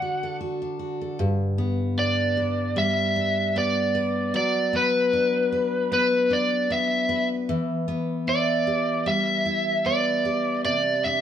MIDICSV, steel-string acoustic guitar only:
0, 0, Header, 1, 2, 480
1, 0, Start_track
1, 0, Key_signature, 1, "major"
1, 0, Tempo, 788436
1, 720, Time_signature, 4, 2, 24, 8
1, 6825, End_track
2, 0, Start_track
2, 0, Title_t, "Steel-string acoustic guitar"
2, 0, Program_c, 0, 25
2, 0, Note_on_c, 0, 50, 72
2, 0, Note_on_c, 0, 62, 49
2, 11, Note_on_c, 0, 66, 51
2, 141, Note_on_c, 0, 69, 55
2, 239, Note_off_c, 0, 66, 0
2, 247, Note_on_c, 0, 66, 57
2, 373, Note_off_c, 0, 62, 0
2, 376, Note_on_c, 0, 62, 46
2, 476, Note_off_c, 0, 66, 0
2, 483, Note_on_c, 0, 66, 49
2, 610, Note_off_c, 0, 69, 0
2, 617, Note_on_c, 0, 69, 53
2, 725, Note_on_c, 0, 43, 80
2, 775, Note_off_c, 0, 66, 0
2, 776, Note_off_c, 0, 69, 0
2, 960, Note_off_c, 0, 62, 0
2, 963, Note_on_c, 0, 59, 57
2, 1202, Note_on_c, 0, 62, 61
2, 1443, Note_on_c, 0, 71, 61
2, 1680, Note_on_c, 0, 55, 72
2, 1896, Note_off_c, 0, 50, 0
2, 1921, Note_off_c, 0, 62, 0
2, 1923, Note_on_c, 0, 62, 56
2, 2164, Note_off_c, 0, 59, 0
2, 2166, Note_on_c, 0, 59, 63
2, 2401, Note_off_c, 0, 71, 0
2, 2403, Note_on_c, 0, 71, 65
2, 2639, Note_off_c, 0, 55, 0
2, 2642, Note_on_c, 0, 54, 84
2, 2644, Note_off_c, 0, 43, 0
2, 2878, Note_off_c, 0, 59, 0
2, 2880, Note_on_c, 0, 59, 62
2, 3122, Note_off_c, 0, 62, 0
2, 3124, Note_on_c, 0, 62, 62
2, 3360, Note_off_c, 0, 71, 0
2, 3362, Note_on_c, 0, 71, 57
2, 3600, Note_off_c, 0, 59, 0
2, 3602, Note_on_c, 0, 59, 73
2, 3830, Note_off_c, 0, 62, 0
2, 3837, Note_on_c, 0, 62, 60
2, 4079, Note_off_c, 0, 59, 0
2, 4081, Note_on_c, 0, 59, 63
2, 4313, Note_off_c, 0, 71, 0
2, 4316, Note_on_c, 0, 71, 67
2, 4560, Note_on_c, 0, 52, 85
2, 4561, Note_off_c, 0, 54, 0
2, 4612, Note_off_c, 0, 62, 0
2, 4794, Note_off_c, 0, 59, 0
2, 4796, Note_on_c, 0, 59, 63
2, 5036, Note_on_c, 0, 64, 61
2, 5275, Note_off_c, 0, 71, 0
2, 5278, Note_on_c, 0, 67, 67
2, 5516, Note_on_c, 0, 55, 67
2, 5754, Note_off_c, 0, 64, 0
2, 5756, Note_on_c, 0, 64, 60
2, 5992, Note_off_c, 0, 59, 0
2, 6000, Note_on_c, 0, 59, 57
2, 6238, Note_off_c, 0, 67, 0
2, 6240, Note_on_c, 0, 67, 67
2, 6478, Note_off_c, 0, 52, 0
2, 6481, Note_on_c, 0, 48, 80
2, 6533, Note_off_c, 0, 59, 0
2, 6728, Note_on_c, 0, 62, 61
2, 6746, Note_off_c, 0, 64, 0
2, 6825, Note_off_c, 0, 48, 0
2, 6825, Note_off_c, 0, 55, 0
2, 6825, Note_off_c, 0, 62, 0
2, 6825, Note_off_c, 0, 67, 0
2, 6825, End_track
0, 0, End_of_file